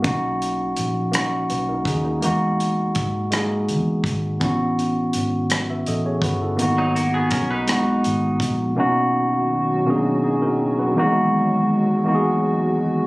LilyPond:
<<
  \new Staff \with { instrumentName = "Clean electric guitar" } { \time 6/8 \key b \major \tempo 4. = 55 r2. | r2. | r2. | r16 <fis dis'>16 <ais fis'>16 <b gis'>16 <cis' ais'>16 <dis' b'>4. r16 |
r2. | r2. | }
  \new Staff \with { instrumentName = "Tine electric piano" } { \time 6/8 \key b \major << { r2 <fis' b'>16 <dis' ais'>16 <dis' gis'>16 <ais dis'>16~ | <ais dis'>16 r2 r8. | r4. r16 <b' e''>16 <a' dis''>16 <gis' cis''>16 <fis' b'>16 <e' a'>16~ | <e' a'>16 r2 r8. |
r2 <dis' gis'>16 <dis' ais'>8 <fis' b'>16~ | <fis' b'>16 r2 r8. | } \\ { <ais cis' dis' fis'>4 r8 <ais cis' dis' fis'>8 r4 | <gis ais dis' fis'>4 r8 <gis ais dis' gis'>4 r8 | <b cis' e' fis'>4 r2 | <ais b dis' fis'>4 r8 <gis b dis' fis'>4 r8 |
<b, ais cis' dis' fis'>4 r8 <b, ais cis' d' dis' gis'>4 r8 | <e, g gis ais dis' fis'>4 r8 <e, gis ais dis' fis' gis'>4 r8 | } >> }
  \new Staff \with { instrumentName = "Analog synth pad" } { \clef bass \time 6/8 \key b \major << { r2. | r2. | r2. | r2. |
<b, fis fis'>2. | <e, gis fis'>2. | } \\ { r2. | r2. | r2. | r2. |
dis2.~ | dis2. | } >> }
  \new Staff \with { instrumentName = "Fingered electric bass" } { \clef bass \time 6/8 \key b \major b,,4 ais,,4 b,,8 dis,8 | e,4 gis,4 e,8 gis,,8 | a,,4 gis,,4 a,,8 g,,8 | gis,,4 b,,4 gis,,8 ais,,8 |
r2. | r2. | }
  \new DrumStaff \with { instrumentName = "Drums" } \drummode { \time 6/8 <hh bd>8 hh8 hh8 <hh ss>8 hh8 <hh bd>8 | hh8 hh8 <hh bd>8 <hh ss>8 hh8 <hh bd>8 | <hh bd>8 hh8 hh8 <hh ss>8 hh8 <hh bd>8 | hh8 hh8 <hh bd>8 <hh ss>8 hh8 <hh bd>8 |
r4. r4. | r4. r4. | }
>>